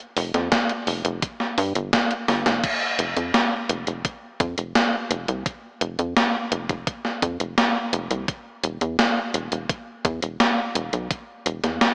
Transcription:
0.17 F1, open hi-hat
0.34 F2, snare, closed hi-hat
0.52 kick, snare, closed hi-hat
0.69 closed hi-hat
0.87 F1, open hi-hat
1.05 F1, closed hi-hat
1.22 kick, closed hi-hat
1.40 snare
1.58 G2, open hi-hat
1.75 G1, closed hi-hat
1.93 kick, snare, closed hi-hat
2.11 closed hi-hat
2.28 G1, snare, open hi-hat
2.46 F1, snare, closed hi-hat
2.64 kick, closed hi-hat, crash
2.99 F1, closed hi-hat
3.17 F2, closed hi-hat
3.34 snare, closed hi-hat
3.69 F1, closed hi-hat
3.87 F1, closed hi-hat
4.05 kick, closed hi-hat
4.40 F2, kick, closed hi-hat
4.58 F1, closed hi-hat
4.75 snare, closed hi-hat
5.11 F1, closed hi-hat
5.28 C2, closed hi-hat
5.46 kick, closed hi-hat
5.81 F1, closed hi-hat
5.99 F2, closed hi-hat
6.17 snare, closed hi-hat
6.52 F1, closed hi-hat
6.69 F1, kick, closed hi-hat
6.87 kick, closed hi-hat
7.05 snare
7.22 F2, kick, closed hi-hat
7.40 F1, closed hi-hat
7.58 snare, closed hi-hat
7.93 F1, closed hi-hat
8.11 C2, closed hi-hat
8.28 kick, closed hi-hat
8.64 E1, closed hi-hat
8.81 E2, closed hi-hat
8.99 snare, closed hi-hat
9.34 E1, closed hi-hat
9.52 E1, closed hi-hat
9.69 kick, closed hi-hat
10.05 E2, kick, closed hi-hat
10.22 E1, closed hi-hat
10.40 snare, closed hi-hat
10.75 E1, closed hi-hat
10.93 B1, closed hi-hat
11.11 kick, closed hi-hat
11.46 E1, closed hi-hat
11.64 E2, snare, closed hi-hat
11.81 snare, closed hi-hat

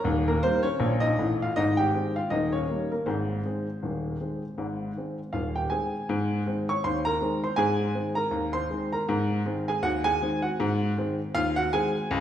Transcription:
0.04 D#1 D#2
0.28 A#3 A#4
0.43 D#3 G3 A#3 C4 C5
0.63 C#4 C#5
0.80 A#1 A#2
1.00 D#4 D#5
1.19 A1 A2
1.42 F4 F5
1.56 G#1 G#2 D#4 D#5
1.77 G4 G5
1.94 D#3 G#3 C4
2.16 F4 F5
2.30 D#1 D#2 D#4 D#5
2.52 C#4 C#5
2.69 D#3 G3 A#3
2.92 A#3 A#4
3.06 G#1 G#2 C4 G#4 C5
3.45 D#3 G#3 C4
3.83 D#1 D#2
4.20 D#3 G#3 C4
4.58 G#1 G#2
4.97 D#3 G#3 C4
5.33 D#1 D#2 F4 F5
5.55 G4 G5
5.70 D#3 G#3 C4 G#4 G#5
6.09 G#2
6.46 D#3 G#3 C4
6.69 C#5 C#6
6.84 D#2 C5 C6
7.05 A#4 A#5
7.21 D#3 G#3 C4
7.44 C5 C6
7.56 G#2 G#4 G#5
7.95 D#3 G#3 C4
8.15 A#4 A#5
8.31 D#2
8.53 C5 C6
8.70 D#3 G#3 C4
8.92 A#4 A#5
9.09 G#2
9.46 D#3 G#3 C4
9.68 G#4 G#5
9.83 D#2 F#4 F#5
10.04 G#4 G#5
10.22 D#3 G#3 C4
10.42 F#4 F#5
10.60 G#2
10.97 D#3 G#3 C4
11.35 D#2 F4 F5
11.56 F#4 F#5
11.73 D#3 G#3 C4 G#4 G#5
12.11 C#2

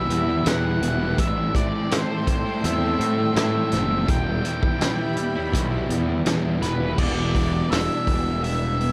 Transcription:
Already playing: E2 B2 E3 G3 B3 E4 G4 E5 B5
0.09 E2 G3, closed hi-hat
0.27 G3 B3 E4, muted distorted electric guitar stroke
0.42 E2 B2 E3 G3, closed hi-hat
0.47 B3 E4 F#5, snare
0.62 G3 B3 E4
0.80 E1 E2 B2 E3 G3 B3, closed hi-hat
0.84 E4
0.99 B2 E3 G3 B3 E4
1.16 A1 A2 E3 G3 A3 A4 E5 G5 C6, kick, closed hi-hat
1.20 C4 E4
1.55 E3 A3 C4 E4 D5, kick, closed hi-hat
1.71 E3 A3
1.89 A2 E3 A3 C4 E4, snare, closed hi-hat
1.93 C5
2.08 A3 C4 E4
2.25 A2 E3 G3 A3, muted overdriven electric guitar stroke, kick, closed hi-hat
2.44 C4 E4, muted distorted electric guitar stroke
2.49 A3
2.61 E2 A2 E3 A3 C4, closed hi-hat
2.66 E5
2.78 E3 A3 C4 E4
2.84 A3
2.99 A2 G3, closed hi-hat
3.16 C4 E4, muted distorted electric guitar stroke
3.20 A3
3.34 A2 E3 G3 A3, snare, closed hi-hat
3.38 C4 E4 E5
3.53 A3 C4 E4
3.69 F#1 A2 E3 A3 C4, snare, closed hi-hat
3.74 C4 E4
3.88 E3 A3 C4 E4
3.93 A3
4.06 E1 E2 B2 E3 G3 B3 E4 G4 E5 B5, kick, closed hi-hat
4.10 E3 G5
4.43 E3 G3 B3 E4, closed hi-hat
4.61 B2 E3, kick
4.78 E2 B2 E3 G3 B3, snare, closed hi-hat
4.83 E4
4.98 G3 B3 E4
5.16 E2 B2 E3 G3, muted overdriven electric guitar stroke, closed hi-hat
5.35 G3 B3 E4, muted distorted electric guitar stroke
5.52 B1 E2 B2 E3 B3, kick, closed hi-hat
5.70 B2 E3 B3 E4
5.74 G3
5.89 E2 G3, closed hi-hat
6.08 G3 B3 E4, muted distorted electric guitar stroke
6.25 E2 B2 E3 G3 B3 E4, snare, closed hi-hat
6.44 G3 B3 E4
6.60 E1 E2 B2 E3 G3 B3 B4, snare, closed hi-hat
6.65 B3 E4
6.79 B2 E3 B3 E4
6.83 G3
6.96 E1 E2 B2 E3 G3 B3 D5, kick, crash
7.01 B3 E4
7.33 B2 E3 B3, kick, open hi-hat
7.69 E1 E2 B2 E3 D4 E5, snare, open hi-hat
8.06 E1 B2 E3 B3, kick, open hi-hat
8.43 B3 E5, open hi-hat
8.80 B3, open hi-hat

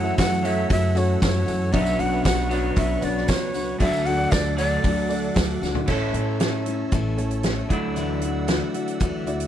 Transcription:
Already playing: F#2 E3 F#3 A3 C#4 E4 F#4 A4 C#5 F#5 E6
0.03 E4 F#4 A4 E5, tambourine
0.18 F#2 E3 A3 C#4 F#4 F#5, kick, snare, open hi-hat, tambourine
0.43 F#3 A3 C#4 E4 F#4 C#5 E5, open hi-hat, tambourine
0.47 E3
0.70 F#2 C#3 E3 A3 C#4 F#4 E5, kick, open hi-hat
0.83 tambourine
0.95 E3 A3 C#4 E4 F#4 A4 C#5, open hi-hat, tambourine
1.20 F#2 E3 A3 C#4 F#4 C#5, kick, snare, open hi-hat, tambourine
1.36 tambourine
1.46 F#2 E3 A3 C#4 F#4, open hi-hat, tambourine
1.61 tambourine
1.72 B1 B2 F#3 B3 C#4 D4 F#4 B4 C#5 E5 C#6, kick, open hi-hat, tambourine
1.86 tambourine
1.99 B1 C#4 D4 F#4 F#5, open hi-hat
2.13 D4 F#4 B4 E5, tambourine
2.24 B1 F#3 C#4 D4 F#4 F#5, kick, snare, open hi-hat, tambourine
2.49 B2 F#3 B3 C#4 D4 F#4 C#5, open hi-hat, tambourine
2.76 B1 B2 F#3 C#4 D4 F#4 E5, kick, open hi-hat
3.01 B1 D4 F#4 B4 C#5 D5, open hi-hat, tambourine
3.06 C#4
3.17 snare
3.28 C#2 F#3 C#4 D4 F#4 C#5, kick, snare, open hi-hat, tambourine
3.41 tambourine
3.53 C#4 D4 F#4, open hi-hat, tambourine
3.68 tambourine
3.79 D2 D3 F#3 A3 D4 F#4 A4 D5 E5 F#5 D6, kick, open hi-hat, tambourine
3.93 tambourine
4.06 A3 D4 F#4 F#5, open hi-hat, tambourine
4.17 D4 F#4 A4 D5, tambourine
4.31 D2 F#3 A3 D4 F#4 D5, kick, snare, open hi-hat, tambourine
4.46 tambourine
4.57 D3 F#3 A3 D4 F#4 D5, open hi-hat, tambourine
4.71 tambourine
4.84 D2 D3 F#3 A3 D4 F#4, kick, open hi-hat, tambourine
4.97 tambourine
5.09 A3 D4 F#4 A4 D5, open hi-hat, tambourine
5.34 D2 F#3 A3 D4 F#4, kick, snare, open hi-hat, tambourine
5.62 D2 A3 D4 F#4, snare, tambourine
5.75 floor tom, tambourine
5.87 A1 A2 E3 A3 C#4 E4 A4 C#5 E5 A5 E6, kick, crash
6.12 A2 A3 C#4 E4 A4, closed hi-hat
6.40 A3 C#4 E4 A4, snare, closed hi-hat
6.66 A3 C#4 E4 A4, closed hi-hat
6.92 A1 A2 E3 A3 C#4 E4 A4, kick, closed hi-hat
7.17 A3 C#4 E4 A4 C#5 E5, closed hi-hat
7.31 closed hi-hat
7.43 A3 C#4 E4 A4, snare, closed hi-hat
7.69 D2 D3 F#3 A3 D4 E4 F#4 D5 E5 F#5, kick, closed hi-hat
7.96 D3 E3 A3 E4 F#4, closed hi-hat
8.21 A3 E4 F#4, closed hi-hat
8.48 E3 A3 E4 F#4, snare, closed hi-hat
8.74 A3 E4 F#4, closed hi-hat
8.88 closed hi-hat
9.00 D2 D3 E3 A3 E4 F#4, kick, closed hi-hat
9.26 A3 E4 F#4 D5 E5, closed hi-hat
9.40 closed hi-hat

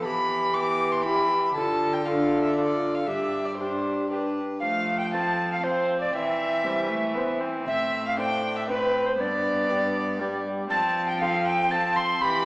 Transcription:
Already playing: B3
0.03 E3 G4 B5
0.53 B3 G4 D6
0.92 C6
1.03 E4 G4 B5
1.55 D3 F4 A4 A5
1.93 G5
2.05 A3 D4 F4 A4 F5
2.42 E5
2.56 A3 D4 F4 A4 D5
2.95 F5
3.07 G2 D4 G4 E5
3.45 D5
3.57 D4 G4 C5
4.09 D4 G4 B4
4.60 F3 A3 F5
4.99 G5
5.12 A3 C4 F4 C5 A5
5.51 F5
5.63 A3 C4 F4 C5
6.00 D5
6.13 E3 C4 E5
6.64 G3 C4 C5
6.89 A3
7.14 B3 C4 C5
7.41 C4
7.67 A2 E5
8.06 F5
8.17 A3 C4 D4 C5 G5
8.56 E5
8.68 A3 C4 A4 B4
9.06 C5
9.17 G2 B3 D5
9.69 B3 D4 G4
10.19 G3 B3 D4 G4
10.70 F3 C4 A5
11.08 G5
11.20 C4 F4 A4 F5
11.45 G5
11.71 C4 F4 A4 A5
11.96 C6
12.21 E3 G4 B5

